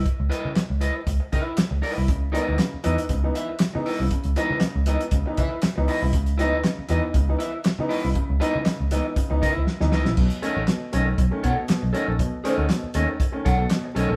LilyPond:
<<
  \new Staff \with { instrumentName = "Clean electric guitar" } { \time 4/4 \key cis \minor \tempo 4 = 119 r8 <e' b' dis''>8 r8 <e' b' dis''>16 r8. <e' b' e''>8 r8 <e' b' dis''>8 | r8 <e' b' dis''>8 r8 <e' b' dis''>16 r8. <e' b' e''>16 r8. <e' b' dis''>8 | r8 <e' b' dis''>8 r8 <e' b' dis''>16 r8. <e' b' e''>8 r8 <e' b' dis''>8 | r8 <e' b' dis''>8 r8 <e' b' dis''>16 r8. <e' b' e''>16 r8. <e' b' dis''>8 |
r8 <e' b' dis''>8 r8 <e' b' dis''>16 r8. <e' b' e''>8 r8 <e' b' dis''>8 | r8 <a' cis'' dis''>8 r8 <a' cis'' dis''>16 r8. <a' cis'' fis''>16 r8. <a' cis'' dis''>8 | r8 <a' cis'' dis''>8 r8 <a' cis'' dis''>16 r8. <a' cis'' fis''>8 r8 <a' cis'' dis''>8 | }
  \new Staff \with { instrumentName = "Upright piano" } { \time 4/4 \key cis \minor r1 | cis16 r16 <e b dis'>16 <b dis'>16 cis16 r16 <e b dis'>16 <b dis'>16 cis16 <e b dis'>16 <b dis'>16 r8 <e b dis'>16 r16 cis16 | cis16 r16 <e b dis'>16 <b dis'>16 cis16 r16 <e b dis'>16 <b dis'>16 cis16 <e b dis'>16 <b dis'>16 r8 <e b dis'>16 r16 cis16 | cis16 r16 <e b dis'>16 <b dis'>16 cis16 r16 <e b dis'>16 <b dis'>16 cis16 <e b dis'>16 <b dis'>16 r8 <e b dis'>16 r16 cis16 |
cis16 r16 <e b dis'>16 <b dis'>16 cis16 r16 <e b dis'>16 <b dis'>16 cis16 <e b dis'>16 <b dis'>16 r8 <e b dis'>16 r16 cis16 | b,16 r16 <dis a cis'>16 <a cis'>16 b,16 r16 <dis a cis'>16 <a cis'>16 r16 <dis a cis'>16 r16 b,16 b,16 r16 <dis a cis'>16 <a cis'>16 | b,16 r16 <dis a cis'>16 <a cis'>16 b,16 r16 <dis a cis'>16 <a cis'>16 r16 <dis a cis'>16 r16 b,16 b,16 r16 <dis a cis'>16 <a cis'>16 | }
  \new Staff \with { instrumentName = "Picked electric bass" } { \clef bass \time 4/4 \key cis \minor r16 cis,16 r16 cis16 r16 cis,8 r16 cis,16 r16 cis16 r8 cis,16 r16 c,16 | cis,8. d,16 r8 e,16 r16 cis,8 r8. cis16 r16 c,16 | r16 cis,16 r16 cis16 r16 cis,8 r16 cis,16 r16 cis16 r8 cis,16 r16 c,16 | cis,8. d,16 r8 e,16 r16 cis,8 r8. cis16 r16 c,16 |
r16 cis,16 r16 cis16 r16 cis,8 r8 cis,16 cis16 cis,16 r16 d,16 cis,16 ais,,16 | b,,16 r8 a,,16 r8 b,,8 b,,16 r16 b,16 r8 b,,16 r16 ais,,16 | b,,16 r8 d,16 r8 dis,16 r8. b,,8 r8 b,,16 ais,,16 | }
  \new DrumStaff \with { instrumentName = "Drums" } \drummode { \time 4/4 <hh bd>8 hh8 <hc hh sn>8 hh8 <hh bd>8 <hh bd>8 <hc hh sn>8 hho8 | <hh bd>8 hh8 <hc hh sn>8 hh16 hh16 <hh bd>8 hh8 <hc hh sn>8 hho8 | <hh bd>16 hh16 hh8 <hc hh sn>8 hh16 hh16 <hh bd>8 <hh bd>8 <hc hh sn>8 hho8 | <hh bd>16 hh16 hh8 <hc hh sn>8 hh8 <hh bd>8 hh8 <hc hh sn>8 hho8 |
<hh bd>8 hh8 <hc hh sn>8 hh8 <hh bd>8 <hh bd>8 sn16 sn16 sn16 sn16 | <cymc bd>16 hh16 hh8 <hc hh sn>8 hh8 <hh bd>8 <hh bd>8 <hc hh sn>8 hh8 | <hh bd>8 hh8 <hc hh sn>8 hh8 <hh bd>8 <hh bd>8 <hc hh sn>8 hh8 | }
>>